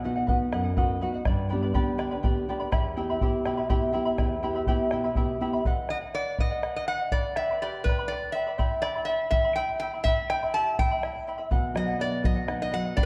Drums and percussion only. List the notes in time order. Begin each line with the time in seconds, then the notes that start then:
0.28 bombo low
0.53 bombo rim
0.77 bombo rim, bombo low
1.25 bombo rim, bombo low
1.74 bombo low
1.99 bombo rim
2.24 bombo rim, bombo low
2.72 bombo rim, bombo low
3.21 bombo low
3.46 bombo rim
3.70 bombo rim, bombo low
4.18 bombo rim, bombo low
4.31 bombo rim
4.43 bombo rim
4.55 bombo rim
4.67 bombo rim, bombo low
4.91 bombo rim
5.15 bombo low
5.29 bombo rim
5.53 bombo rim
5.65 bombo low
5.89 bombo rim
6.02 bombo rim
6.14 bombo rim
6.39 bombo low
6.51 bombo rim
6.63 bombo rim
7.12 bombo low
7.36 bombo rim
7.49 bombo rim
7.61 bombo rim
7.85 bombo low
7.98 bombo rim
8.59 bombo low
8.83 bombo rim
8.95 bombo rim
9.08 bombo rim
9.32 bombo low
9.44 bombo rim
10.05 bombo low
10.30 bombo rim
10.79 bombo low
11.03 bombo rim
11.16 bombo rim
11.27 bombo rim
11.40 bombo rim
11.51 bombo low
11.76 bombo rim
11.88 bombo rim
12.00 bombo rim
12.24 bombo low
12.37 bombo rim
12.48 bombo rim
12.97 bombo low